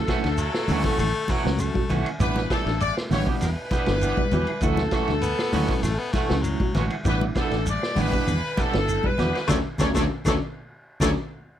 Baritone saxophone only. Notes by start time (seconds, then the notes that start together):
0.38 F#3
0.83 A3
0.99 A3
1.31 F#3
1.61 A3
5.21 B3
5.82 A3
5.98 B3
6.12 A3
6.42 F#3
9.47 A3
9.79 A3
9.95 A3
10.25 A3
11.01 A3